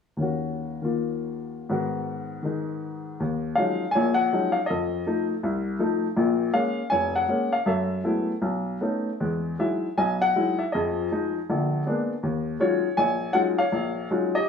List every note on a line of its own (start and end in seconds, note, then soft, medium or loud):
0.17 1.69 D#2 soft
0.17 0.80 D#3 soft
0.17 1.71 C#4 soft
0.22 1.69 F#4 soft
0.82 1.68 D#3 soft
0.82 1.70 A#3 soft
0.82 1.71 F4 soft
1.69 3.19 G#2 soft
1.69 2.41 D#3 soft
1.69 3.20 B3 soft
1.69 3.20 F#4 medium
2.43 3.19 D#3 soft
2.43 3.20 G#3 soft
2.43 3.21 D#4 soft
3.20 3.53 D#2 soft
3.55 3.84 F3 soft
3.55 3.84 F#3 soft
3.55 3.84 G#3 soft
3.55 3.84 C#4 soft
3.55 3.84 D#4 soft
3.55 3.96 F5 medium
3.91 4.67 C#5 medium
3.91 4.19 G#5 medium
3.96 4.28 A#1 medium
3.96 4.28 A#2 medium
4.14 4.56 F#5 medium
4.33 4.59 F3 soft
4.33 4.59 F#3 soft
4.33 4.59 G#3 soft
4.33 4.59 C#4 soft
4.33 4.59 D#4 soft
4.52 4.67 F5 medium
4.66 5.26 D#5 medium
4.70 5.03 F2 medium
4.70 5.40 A4 soft
5.07 5.32 F3 soft
5.07 5.33 A3 soft
5.07 5.33 D#4 soft
5.43 5.76 C2 medium
5.79 6.05 F3 soft
5.79 6.06 A3 soft
5.79 6.06 D#4 medium
6.16 6.49 A#1 medium
6.16 6.49 A#2 medium
6.54 6.80 G#3 soft
6.54 6.80 A#3 soft
6.54 6.80 C#4 soft
6.54 6.89 F5 medium
6.90 7.24 F1 medium
6.90 7.62 C#5 medium
6.90 7.16 G#5 medium
7.16 7.54 F#5 medium
7.29 7.55 G#3 soft
7.29 7.55 A#3 soft
7.29 7.55 C#4 medium
7.53 7.67 F5 medium
7.66 7.99 F#2 medium
7.66 8.40 A4 soft
7.66 8.26 E5 medium
8.04 8.31 F#3 soft
8.04 8.31 G#3 soft
8.04 8.31 A3 soft
8.04 8.31 B3 soft
8.04 8.31 E4 soft
8.42 8.76 B1 medium
8.81 9.09 A3 soft
8.81 9.08 B3 soft
8.81 9.09 C#4 soft
8.81 9.09 D#4 soft
9.20 9.54 E2 medium
9.20 9.54 G#3 soft
9.59 9.86 F#3 soft
9.59 9.86 G#3 soft
9.59 9.86 D#4 soft
9.59 9.86 E4 soft
9.59 9.99 E5 medium
9.98 10.31 B1 medium
9.98 10.71 D#5 medium
9.98 10.24 G#5 medium
10.22 10.62 F#5 medium
10.36 10.63 F#3 soft
10.36 10.63 G#3 soft
10.36 10.63 D#4 soft
10.36 10.63 E4 medium
10.59 10.73 E5 medium
10.72 11.07 F2 medium
10.72 11.07 F3 medium
10.72 11.45 G#4 soft
10.72 11.31 D#5 medium
11.12 11.38 F3 soft
11.12 11.38 G#3 soft
11.12 11.38 D#4 soft
11.50 11.82 A#1 medium
11.50 11.82 D3 medium
11.86 12.12 G#3 soft
11.86 12.12 A#3 soft
11.86 12.12 B3 soft
11.86 12.12 D4 medium
12.23 12.55 D#2 medium
12.60 12.86 F#3 soft
12.60 12.86 G#3 soft
12.60 12.86 C#4 soft
12.60 12.86 D#4 soft
12.60 12.86 F4 medium
12.60 12.97 C#5 medium
12.97 13.30 A#1 medium
12.97 13.58 C#5 medium
12.97 13.36 G#5 medium
13.33 13.60 F#3 soft
13.33 13.60 G#3 soft
13.33 13.60 C#4 soft
13.33 13.60 D#4 soft
13.33 13.60 F4 medium
13.33 13.39 F#5 medium
13.58 14.33 C#5 medium
13.58 14.07 F5 medium
13.72 14.06 A#1 medium
14.11 14.38 F#3 soft
14.11 14.38 G#3 soft
14.11 14.38 C#4 soft
14.11 14.38 D#4 soft
14.11 14.38 F4 soft
14.35 14.49 G4 medium
14.35 14.49 D#5 medium